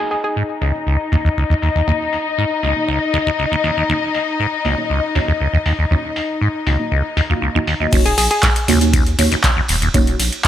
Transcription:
Already playing: D#4 D#5
0.11 G#4, open hi-hat
0.24 G#4
0.36 G#2
0.62 C#2 A#3 D#4 F#4 C#5, open hi-hat
0.75 A#3 D#4 F#4 C#5
0.87 C#2
1.12 D#2 A#3 D#4 F#4 C#5, open hi-hat
1.25 D#2
1.37 C#2
1.50 D#2
1.62 D#2, open hi-hat
1.75 D#2
1.88 D#2 A#3 D#4 F#4 C#5
2.13 open hi-hat
2.38 G#2
2.63 C#2 A#3 D#4 F#4 D#5, open hi-hat
2.76 A#3 D#4 F#4
2.88 C#2
3.14 D#2, open hi-hat
3.27 D#2
3.39 C#2
3.52 D#2
3.64 D#2 A#3 D#4 F#4 C#5, open hi-hat
3.77 D#2
3.89 D#2 A#3 D#4 F#4 C#5
4.14 open hi-hat
4.40 G#2
4.65 C#2 A#3 D#4 F#4 C#5, open hi-hat
4.78 A#3 D#4 F#4 C#5
4.90 C#2
5.15 D#2 A#3 D#4 F#4 C#5, open hi-hat
5.28 D#2
5.41 C#2
5.53 D#2
5.66 D#2, open hi-hat
5.79 D#2
5.91 D#2 A#3 D#4 F#4 C#5
6.16 open hi-hat
6.41 G#2
6.67 C#2 A#3 D#4 F#4 D#5, open hi-hat
6.80 A#3 D#4 F#4 D#5
6.92 C#2
7.17 D#2, open hi-hat
7.30 D#2 A#3 D#4 F#4 F5
7.42 C#2
7.55 D#2 A#3 D#4 F#4 D#5
7.67 D#2, open hi-hat
7.80 D#2 A#3 D#4 F#4 D#5
7.93 D#1 D#2 A#3 D#4 F#4 C#5, kick, closed hi-hat, crash, ride, tambourine
8.05 G#4, closed hi-hat
8.18 A#1 G#4, open hi-hat, ride, tambourine
8.31 G#4, closed hi-hat
8.43 G#2, kick, snare, clap, closed hi-hat, tambourine
8.56 closed hi-hat
8.68 C#2 D#2 A#3 D#4 F#4 C#5, open hi-hat, ride, tambourine
8.81 A#3 D#4 F#4 C#5, closed hi-hat
8.93 C#2, kick, closed hi-hat, ride, tambourine
9.06 closed hi-hat
9.19 D#2 A#3 D#4 F#4 C#5, open hi-hat, ride, tambourine
9.31 D#2, snare, closed hi-hat
9.44 C#2, kick, snare, clap, closed hi-hat, ride, tambourine
9.57 D#2
9.68 D#1 D#2, open hi-hat, ride, tambourine
9.82 D#2, closed hi-hat
9.94 D#1 D#2 A#3 D#4 F#4 C#5, kick, closed hi-hat, ride, tambourine
10.07 closed hi-hat
10.19 A#1, open hi-hat, ride, tambourine
10.32 closed hi-hat
10.44 G#2, kick, clap, closed hi-hat, ride, tambourine

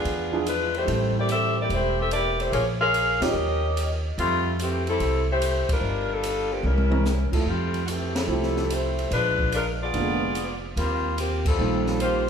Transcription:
Already playing: B3 D4 F4 G#4
0.05 E2, kick, ride
0.32 F3 D4 E4 G#4
0.46 G#3 D4 F4 B4, hi-hat pedal, ride
0.74 A3 E4 G4 C5, ride
0.85 A1 G3 C4 E4 A4, kick, ride
1.18 A#3 E4 G4 D5
1.29 C4 G4 A4 E5, hi-hat pedal, ride
1.60 A#3 E4 G4 D5
1.69 E1, kick, ride
1.74 A3 E4 G4 C5
2.00 C4 G4 A4 E5
2.11 A#3 E4 G4 D5, hi-hat pedal, ride
2.40 A3 E4 G4 C5, ride
2.52 A#1 A#3 F4 G#4 C#5, kick, ride
2.81 C#4 G#4 A#4 F5
2.94 hi-hat pedal, ride
3.20 D2 F3 C#4 D#4 G4 A#4 D#5, snare, ride
3.34 D#2
3.77 hi-hat pedal, ride
4.18 F2 G3 A3 C4 F4, kick, ride
4.59 E3 A3 C4 G4, hi-hat pedal, ride
4.87 G3 C4 E4 A4, ride
5.00 C2, kick, ride
5.31 A3 E4 G4 C5
5.42 hi-hat pedal, ride
5.69 G3 D4 F4 A#4, muted upright bass stroke, kick, ride
5.81 G1
6.13 G3 D4 F4 A4
6.23 hi-hat pedal, ride
6.51 F3 A#3 D4 G4
6.63 C2 G3 C#4 E4 A#4, high tom
6.78 high tom
6.90 E3 C4 C#4 A#4, high tom
7.05 snare, hi-hat pedal
7.32 F3 A3 E4 A4, muted upright bass stroke, kick, crash
7.44 F2 G3 A3 C4 E4 F4, kick
7.74 ride
7.86 F#4, hi-hat pedal, ride
7.90 E3 A3 C4 G4
8.16 G3 C4 E4 A4, snare, ride
8.27 C2 F3 A3 C4 E4 G4
8.43 snare
8.56 snare
8.70 A3 E4 G4 C5, hi-hat pedal, ride
8.99 ride
9.11 A#1 G#3 D4 F4 B4, kick, ride
9.39 kick
9.52 G#3 D4 F4 A#4, hi-hat pedal, ride
9.82 B3 F4 G#4 D5
9.93 F1 D3 G#3 A#3 B3 F4, kick, ride
10.35 hi-hat pedal, ride
10.76 D#2 G3 A#3 C4 F4, kick, ride
11.18 F3 A#3 C4 G4, hi-hat pedal, ride
11.45 G3 C4 F4 A4, kick, crash
11.59 A#1 D#3 G3 A#3 C4 F4
11.86 snare
12.00 A#3 F4 G4 C5, hi-hat pedal, ride

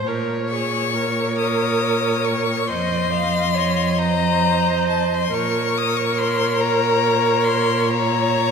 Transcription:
0.06 A#2 A#4 C#5
0.49 G#4 C#6
0.95 A#4
1.38 D#6
2.25 C#6
2.67 F2 C5 D#5 C6
3.10 D#5 F5
3.55 C#5 D#5
3.98 C5 A#5
4.89 A5
5.14 C6
5.32 A#2 A#4 C#5 C#6
5.77 D#6
5.97 C#6
6.18 C6
6.61 A#5
7.44 C6
7.91 C#5 A#5

